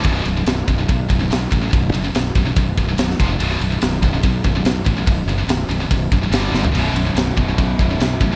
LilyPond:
<<
  \new Staff \with { instrumentName = "Distorted electric guitar" } { \clef bass \time 4/4 \key b \minor \tempo 4 = 143 <b,, fis, b,>8 <b,, fis,>16 <b,, fis,>16 <b,, fis,>8 <b,, fis,>16 <b,, fis,>16 <b,, fis,>8 <b,, fis,>16 <b,, fis,>16 <b,, fis,>8 <b,, fis,>16 <b,, fis,>16 | <b,, fis,>8 <b,, fis,>16 <b,, fis,>16 <b,, fis,>8 <b,, fis,>16 <b,, fis,>16 <b,, fis,>8 <b,, fis,>16 <b,, fis,>16 <b,, fis,>8 <f, c f>16 <f, c>16 | <b,, fis, b,>8 <b,, fis,>16 <b,, fis,>16 <b,, fis,>8 <b,, fis,>16 <b,, fis,>16 <b,, fis,>8 <b,, fis,>16 <b,, fis,>16 <b,, fis,>8 <b,, fis,>16 <b,, fis,>16 | <b,, fis,>8 <b,, fis,>16 <b,, fis,>16 <b,, fis,>8 <b,, fis,>16 <b,, fis,>16 <b,, fis,>8 <b,, fis,>16 <b,, fis,>16 <g, d g>8 <g, d g>16 <g, d>16 |
<b,, fis, b,>8 <b,, fis,>16 <b,, fis,>16 <b,, fis,>8 <b,, fis,>16 <b,, fis,>16 <b,, fis,>8 <b,, fis,>16 <b,, fis,>16 <b,, fis,>8 <b,, fis,>16 fis,16 | }
  \new Staff \with { instrumentName = "Distorted electric guitar" } { \clef bass \time 4/4 \key b \minor <b,, fis, b,>8 <b,, fis,>16 <b,, fis,>16 <b,, fis,>8 <b,, fis,>16 <b,, fis,>16 <b,, fis,>8 <b,, fis,>16 <b,, fis,>16 <b,, fis,>8 <b,, fis,>16 <b,, fis,>16 | <b,, fis,>8 <b,, fis,>16 <b,, fis,>16 <b,, fis,>8 <b,, fis,>16 <b,, fis,>16 <b,, fis,>8 <b,, fis,>16 <b,, fis,>16 <b,, fis,>8 <f, c f>16 <f, c>16 | <b,, fis, b,>8 <b,, fis,>16 <b,, fis,>16 <b,, fis,>8 <b,, fis,>16 <b,, fis,>16 <b,, fis,>8 <b,, fis,>16 <b,, fis,>16 <b,, fis,>8 <b,, fis,>16 <b,, fis,>16 | <b,, fis,>8 <b,, fis,>16 <b,, fis,>16 <b,, fis,>8 <b,, fis,>16 <b,, fis,>16 <b,, fis,>8 <b,, fis,>16 <b,, fis,>16 <g, d g>8 <g, d g>16 <g, d>16 |
<b,, fis, b,>8 <b,, fis,>16 <b,, fis,>16 <b,, fis,>8 <b,, fis,>16 <b,, fis,>16 <b,, fis,>8 <b,, fis,>16 <b,, fis,>16 <b,, fis,>8 <b,, fis,>16 <b,, fis,>16 | }
  \new Staff \with { instrumentName = "Distorted electric guitar" } { \clef bass \time 4/4 \key b \minor r1 | r1 | r1 | r1 |
<b,, fis, b,>4. <b,, fis, b,>2~ <b,, fis, b,>8 | }
  \new Staff \with { instrumentName = "Fingered electric bass" } { \clef bass \time 4/4 \key b \minor b,,,8 b,,,8 b,,,8 b,,,8 b,,8 b,,,8 b,,8 a,,8 | b,,,8 fis,,8 b,,,8 b,,,8 b,,,8 b,,,8 b,,,8 f,,8 | b,,,8 b,,,8 b,,,8 b,,,8 b,,8 b,,,8 b,,8 a,,8 | b,,,8 fis,,8 b,,,8 b,,,8 b,,,8 b,,,8 g,,8 g,,8 |
b,,,8 b,,,8 b,,,8 b,,,8 b,,8 b,,,8 b,,8 a,,8 | }
  \new DrumStaff \with { instrumentName = "Drums" } \drummode { \time 4/4 <bd cymr>8 cymr8 <cymr sn>8 <bd cymr>8 <bd cymr>8 <bd cymr>8 <cymr sn>8 <bd cymr>8 | <bd cymr>8 cymr8 <cymr sn>8 <bd cymr>8 <bd cymr>8 <bd cymr>8 <cymr sn>16 sn16 <bd cymr>8 | cymr8 cymr8 <cymr sn>8 <bd cymr>8 <bd cymr>8 <bd cymr>8 <cymr sn>8 <bd cymr>8 | <bd cymr>8 cymr8 <cymr sn>8 cymr8 <bd cymr>8 <bd cymr>8 <cymr sn>8 sn16 tomfh16 |
cymr8 cymr8 <cymr sn>8 <bd cymr>8 <bd cymr>8 <bd cymr>8 <cymr sn>8 <bd cymr>8 | }
>>